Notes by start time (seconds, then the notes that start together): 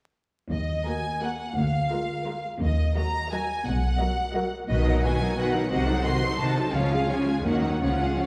0.50 D#2 D#5
0.86 A#3 F#4 A#4 G#5
1.22 A#3 F#4 A#4 F#5
1.56 D2 F5
1.91 G#3 F4 A#4
2.25 G#3 F4 A#4
2.61 D#2 D#5
2.96 F#3 F#4 A#4 D#5 A#5
3.31 F#3 F#4 A#4 D#5 G#5
3.66 B1 B2 F#5
4.00 F#3 F#4 A#4 D#5
4.35 F#3 F#4 A#4 D#5
4.68 B1 B2 D#3 F#4 B4 D#5
4.86 F#3 D#4 A#4 F#5
5.02 B2 D#3 F#4 B4 D#5 G#5
5.20 F#3 D#4 A#4 F#5
5.36 B2 D#3 F#4 B4 D#5 F#5
5.52 F#3 D#4 A#4 F#5
5.70 C2 C3 D#3 F#4 C5 D#5 F#5
5.87 F#3 D#4 A4 C5
6.04 C3 D#3 F#4 C5 D#5 C6
6.22 F#3 D#4 A4 C5
6.38 C3 D#3 F#4 C5 D#5 A5
6.57 F#3 D#4 A4 C5
6.73 C#2 C#3 F3 C#4 F4 C#5 F5
6.92 G#3 F4 G#4 F5
7.08 C#3 F3 C#4 F4 C#5 G#5
7.27 G#3 F4 G#4 F5
7.43 D#2 D#3 A#3 C#4 F#4 A#4 F#5
7.62 F#3 A#3 D#4 C#5
7.80 C#2 C#3 F3 C#4 F4 C#5 F#5
7.99 G#3 F4 G#4 F5
8.16 C#3 F3 C#4 F4 C#5 F5